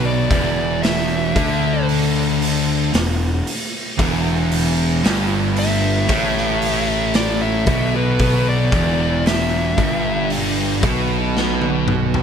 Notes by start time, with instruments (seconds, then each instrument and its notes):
Already playing: picked electric bass B1, distorted electric guitar B2
0.06 lead electric guitar D5
0.30 picked electric bass E1, distorted electric guitar E2, kick, open hi-hat
0.83 lead electric guitar E5, snare, open hi-hat
1.35 picked electric bass D2, distorted electric guitar D3, kick, open hi-hat
1.89 open hi-hat
2.42 open hi-hat
2.93 picked electric bass E1, distorted electric guitar E2, snare, open hi-hat
3.47 open hi-hat
3.99 picked electric bass E1, distorted electric guitar E2, kick, open hi-hat
4.52 open hi-hat
5.03 picked electric bass G1, distorted electric guitar G2, snare, open hi-hat
5.56 lead electric guitar E5, open hi-hat
6.08 picked electric bass A1, distorted electric guitar A2, kick, open hi-hat
6.37 snare
6.62 open hi-hat
7.14 lead electric guitar D5, snare, open hi-hat
7.42 lead electric guitar E5
7.66 picked electric bass B1, distorted electric guitar B2, kick, open hi-hat
7.96 lead electric guitar B4
8.19 kick, open hi-hat
8.49 lead electric guitar D5
8.72 picked electric bass E1, distorted electric guitar E2, kick, open hi-hat
9.26 lead electric guitar E5, snare, open hi-hat
9.77 picked electric bass G1, distorted electric guitar G2, kick, open hi-hat
10.30 open hi-hat
10.81 picked electric bass B1, distorted electric guitar B2, kick, open hi-hat
11.37 snare
11.62 high tom
11.88 mid tom
12.14 floor tom